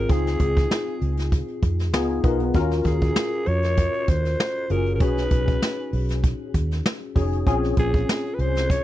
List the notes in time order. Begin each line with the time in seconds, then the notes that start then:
Already playing: C4 D#4 F4 G#4 A#4
0.09 C#2 C4 D#4 F4 G#4, kick, closed hi-hat
0.26 snare, closed hi-hat
0.39 C#2, kick, closed hi-hat
0.57 kick, closed hi-hat
0.71 snare
0.88 closed hi-hat
1.01 C#2, closed hi-hat
1.17 snare, closed hi-hat
1.32 kick, closed hi-hat
1.48 closed hi-hat
1.62 F2, kick, closed hi-hat
1.79 snare, closed hi-hat
1.93 C#2 B3 D#4 F4 G#4, snare
2.09 closed hi-hat
2.24 B1 B3 D#4 F4 A#4, kick, closed hi-hat
2.40 closed hi-hat
2.54 D#2 C#4 F4 F#4 A#4, kick, closed hi-hat
2.70 snare, closed hi-hat
2.84 D#2 G#4, kick, closed hi-hat
3.01 kick, closed hi-hat
3.16 snare
3.32 closed hi-hat
3.46 F2 C#5, closed hi-hat
3.63 snare, closed hi-hat
3.77 kick, closed hi-hat
3.94 closed hi-hat
4.08 D#2 C5, kick, closed hi-hat
4.25 snare, closed hi-hat
4.40 snare
4.55 closed hi-hat
4.70 F#1 C#4 F4 F#4 G#4 A#4, closed hi-hat
4.86 closed hi-hat
4.95 A#4
5.00 B1 C#4 D#4 F#4 G#4 B4, kick, closed hi-hat
5.17 snare, closed hi-hat
5.31 B1, kick, closed hi-hat
5.48 kick, closed hi-hat
5.62 snare
5.79 closed hi-hat
5.93 B1, open hi-hat
6.09 snare, closed hi-hat
6.24 kick, closed hi-hat
6.54 D#2, kick, closed hi-hat
6.71 snare, closed hi-hat
6.86 snare
7.02 closed hi-hat
7.15 F1 C#4 D#4 F#4 G#4, kick, open hi-hat
7.33 closed hi-hat
7.46 A#1 C4 C#4 F4 G#4, kick, closed hi-hat
7.63 snare, closed hi-hat
7.77 A#1 G#4, kick, closed hi-hat
7.94 kick, closed hi-hat
8.09 snare
8.26 closed hi-hat
8.34 B4
8.39 C2 C5, closed hi-hat
8.55 snare, closed hi-hat
8.70 C#5, kick, closed hi-hat